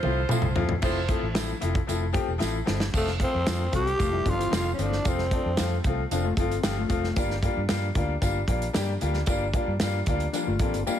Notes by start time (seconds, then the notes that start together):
Already playing: A3 F4 C5
0.03 C2 F3 A3 C4 E4 F4, high tom
0.29 F3 A3 C4 E4 F4, muted fingered electric bass stroke, mid tom, tambourine
0.42 C2, mid tom
0.55 F2 F3 A3 C4 E4 F4, floor tom
0.69 floor tom
0.82 F1 F3 A3 C4 E4 F4 C5, kick, crash, tambourine
1.08 F3 A3 C4 E4, kick, closed hi-hat
1.23 A1
1.34 F3 A3 C4 E4, snare, closed hi-hat, tambourine
1.61 F1 F3 A3 C4 E4, closed hi-hat
1.75 kick, closed hi-hat
1.87 F1 F3 A3 C4 E4, closed hi-hat, tambourine
2.13 F3 A3 C4 G4, kick, closed hi-hat
2.28 E1
2.38 A1 F3 A3 C4 E4, snare
2.42 tambourine
2.65 G1 F3 A3 C4 E4, snare
2.80 snare
2.93 F1 F3 A3 C4 F4, kick, crash, tambourine
2.97 A3
3.07 snare
3.19 F3 A3 C4 F4, kick, closed hi-hat
3.35 F2
3.46 F3 A3 C4 F4, snare, closed hi-hat, tambourine
3.71 C2 F3 A3 C4 F4 A4, kick, closed hi-hat
3.76 G4
3.86 G4, closed hi-hat
3.98 F1 F3 A3 C4 F4, kick, closed hi-hat, tambourine
4.13 G3 E4
4.24 G1 F3 A3 C4 D4 F4, kick, closed hi-hat
4.30 F4
4.39 E3 C4, closed hi-hat
4.50 F1 F3 A3 C4 F4, snare, closed hi-hat, tambourine
4.56 F4
4.74 A3 C#4
4.78 G1 F3 C4 F4, closed hi-hat
4.83 D4
4.92 snare
5.05 F1 F3 A3 C4 F4, kick, closed hi-hat, tambourine
5.18 snare
5.31 F3 A3 C4 D4, kick, closed hi-hat
5.46 F2
5.57 F2 F3 A3 C4 F4, snare, closed hi-hat, tambourine
5.84 C2 F3 A3 C4 F4, kick, closed hi-hat
6.11 F1 F3 A3 C4 D4 F4, closed hi-hat, tambourine
6.24 A3 F4
6.37 G1 F3 A3 C4 F4 A4, kick, closed hi-hat
6.51 closed hi-hat
6.63 G1 F3 A3 C4 F4 G4, snare, closed hi-hat, tambourine
6.77 A3 F4
6.89 F1 F3 A3 C4 F4, kick, closed hi-hat
7.04 snare
7.16 G1 G3 A#3 D4 F4, kick, closed hi-hat, tambourine
7.31 snare
7.43 G3 A#3 D4 F4, kick, closed hi-hat
7.57 G2
7.68 G2 G3 A#3 D4 F4, snare, closed hi-hat, tambourine
7.95 D2 G3 A#3 D4 F4, kick, closed hi-hat
8.22 G1 G3 A#3 D4 F4, kick, closed hi-hat, tambourine
8.48 A#1 G3 A#3 D4 F4, kick, closed hi-hat
8.62 closed hi-hat
8.73 G2 G3 A#3 D4 G4, snare, closed hi-hat, tambourine
9.01 D2 G3 A#3 D4 F4, closed hi-hat
9.14 snare
9.26 G1 G3 A#3 D4 F4, kick, closed hi-hat, tambourine
9.54 G3 A#3 D4 F4, kick, closed hi-hat
9.68 G2
9.80 G2 G3 A#3 D4 F4, snare, closed hi-hat, tambourine
10.06 D2 G3 A#3 D4 F4, kick, closed hi-hat
10.20 closed hi-hat
10.33 F3 G3 A#3 D4 F4, closed hi-hat, tambourine
10.47 G1 A3 F4
10.59 A1 G3 A#3 C4 D4 F4 A4, kick, closed hi-hat
10.74 G1, closed hi-hat
10.87 G3 A#3 D4 F4 G4, muted fingered electric bass stroke, tambourine